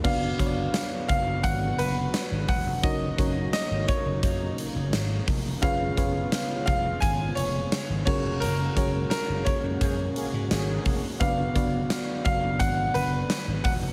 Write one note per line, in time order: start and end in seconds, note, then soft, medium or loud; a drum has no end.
0.04 0.31 F#1 loud
0.04 2.81 D3 medium
0.04 5.59 F#3 medium
0.04 0.30 B3 medium
0.04 2.81 B3 medium
0.04 0.30 D4 medium
0.04 0.30 F#4 medium
0.04 2.81 F#4 medium
0.04 0.31 B4 medium
0.04 0.31 D5 medium
0.04 1.07 F5 loud
0.04 kick loud
0.04 crash loud
0.39 0.66 F#1 loud
0.39 1.43 B3 medium
0.39 1.43 D4 medium
0.39 1.44 F#4 medium
0.39 1.44 B4 medium
0.39 0.46 C#5 medium
0.39 kick medium
0.39 closed hi-hat medium
0.46 1.47 D5 medium
0.74 snare loud
0.74 closed hi-hat medium
0.74 tambourine medium
1.08 1.44 F#1 medium
1.08 1.45 F5 loud
1.08 kick loud
1.08 closed hi-hat medium
1.43 1.70 G#1 medium
1.43 1.80 F#5 loud
1.43 kick loud
1.43 closed hi-hat loud
1.78 2.05 F#1 loud
1.78 2.51 B4 loud
1.78 closed hi-hat medium
2.14 snare loud
2.14 closed hi-hat medium
2.14 tambourine medium
2.31 2.44 G#1 medium
2.48 2.62 E1 medium
2.48 2.84 F#5 loud
2.48 kick loud
2.48 open hi-hat medium
2.66 2.79 F1 medium
2.83 3.10 F#1 loud
2.83 11.17 C#3 medium
2.83 5.60 A#3 medium
2.83 3.09 C#4 medium
2.83 5.60 D#4 medium
2.83 3.10 D#4 medium
2.83 3.10 F#4 medium
2.83 3.10 A#4 medium
2.83 3.10 C#5 medium
2.83 3.49 D#5 loud
2.83 kick loud
2.83 closed hi-hat loud
3.18 3.45 F#1 medium
3.18 4.23 C#4 medium
3.18 4.23 D#4 medium
3.18 4.23 F#4 medium
3.18 4.23 A#4 medium
3.18 4.23 C#5 medium
3.18 kick medium
3.18 closed hi-hat medium
3.53 3.89 D#5 loud
3.53 snare loud
3.53 closed hi-hat medium
3.53 tambourine medium
3.71 3.84 G#1 medium
3.88 5.24 C#5 loud
3.88 kick loud
3.88 closed hi-hat medium
4.06 4.19 F#1 medium
4.23 4.49 F#2 loud
4.23 kick loud
4.23 closed hi-hat loud
4.58 closed hi-hat medium
4.75 4.88 F#1 loud
4.93 5.19 G#1 medium
4.93 snare loud
4.93 closed hi-hat medium
4.93 tambourine medium
5.28 5.54 F1 loud
5.28 kick loud
5.28 open hi-hat medium
5.62 5.89 F#1 loud
5.62 11.17 G#3 medium
5.62 8.04 B3 medium
5.62 5.88 C#4 medium
5.62 8.04 F4 medium
5.62 5.89 F4 medium
5.62 5.89 G#4 medium
5.62 5.89 B4 medium
5.62 5.89 C#5 medium
5.62 6.64 F5 loud
5.62 kick loud
5.62 closed hi-hat loud
5.97 6.24 F#1 loud
5.97 7.02 C#4 medium
5.97 7.02 F4 medium
5.97 7.02 G#4 medium
5.97 7.02 B4 medium
5.97 7.02 C#5 medium
5.97 kick medium
5.97 closed hi-hat medium
6.32 snare loud
6.32 closed hi-hat medium
6.32 tambourine medium
6.66 6.94 F1 medium
6.66 7.02 F5 loud
6.66 kick loud
6.66 closed hi-hat medium
7.00 7.28 G#1 loud
7.00 7.37 G#5 loud
7.00 kick loud
7.00 closed hi-hat loud
7.35 7.63 F1 loud
7.35 8.04 C#5 loud
7.35 closed hi-hat medium
7.72 snare loud
7.72 closed hi-hat medium
7.72 tambourine medium
7.89 8.02 G#1 loud
8.05 8.20 F#1 loud
8.05 11.18 A#3 medium
8.05 8.62 C#4 medium
8.05 8.62 F#4 medium
8.05 13.93 F#4 loud
8.05 8.63 G#4 medium
8.05 8.63 A#4 medium
8.05 8.42 C#5 medium
8.05 8.63 C#5 medium
8.05 kick loud
8.05 crash medium
8.24 8.37 F1 medium
8.40 8.68 F#1 loud
8.40 9.09 A#4 medium
8.40 closed hi-hat loud
8.76 9.03 F#1 loud
8.76 9.81 C#4 medium
8.76 9.81 F#4 medium
8.76 9.81 G#4 medium
8.76 9.81 A#4 medium
8.76 9.81 C#5 medium
8.76 kick medium
8.76 closed hi-hat medium
9.10 9.47 A#4 medium
9.10 snare loud
9.10 closed hi-hat medium
9.10 tambourine medium
9.29 9.42 F#1 loud
9.45 10.81 C#5 medium
9.45 kick medium
9.45 closed hi-hat medium
9.64 9.77 F#2 medium
9.81 10.07 F#2 loud
9.81 9.95 A#3 medium
9.81 9.95 C#4 medium
9.81 9.95 G#4 loud
9.81 kick medium
9.81 closed hi-hat loud
10.16 10.30 A#3 medium
10.16 10.30 C#4 medium
10.16 10.30 G#4 medium
10.16 closed hi-hat medium
10.33 10.47 G#2 loud
10.51 10.77 G#1 loud
10.51 11.01 A#3 loud
10.51 11.01 C#4 loud
10.51 11.01 G#4 loud
10.51 snare loud
10.51 closed hi-hat medium
10.51 tambourine medium
10.85 10.99 F1 medium
10.85 kick medium
10.85 open hi-hat medium
11.20 11.47 F#1 loud
11.20 13.93 D3 medium
11.20 13.93 F#3 medium
11.20 11.47 B3 medium
11.20 13.93 B3 medium
11.20 11.47 D4 medium
11.20 11.47 F#4 medium
11.20 11.47 B4 medium
11.20 11.47 D5 medium
11.20 12.23 F5 loud
11.20 kick loud
11.20 closed hi-hat loud
11.55 11.82 F#1 loud
11.55 12.60 B3 medium
11.55 12.60 D4 medium
11.55 12.60 F#4 medium
11.55 12.60 B4 medium
11.55 12.60 D5 medium
11.55 kick medium
11.55 closed hi-hat medium
11.90 snare loud
11.90 closed hi-hat medium
11.90 tambourine medium
12.25 12.60 F#1 medium
12.25 12.57 F5 loud
12.25 kick loud
12.25 closed hi-hat medium
12.59 12.86 G#1 loud
12.59 12.92 F#5 loud
12.59 kick loud
12.59 closed hi-hat loud
12.94 13.21 F#1 loud
12.94 13.60 B4 loud
12.94 closed hi-hat medium
13.30 snare loud
13.30 closed hi-hat medium
13.30 tambourine medium
13.47 13.60 G#1 medium
13.64 13.78 E1 medium
13.64 13.72 F#5 loud
13.64 kick loud
13.64 open hi-hat medium
13.82 13.93 F1 medium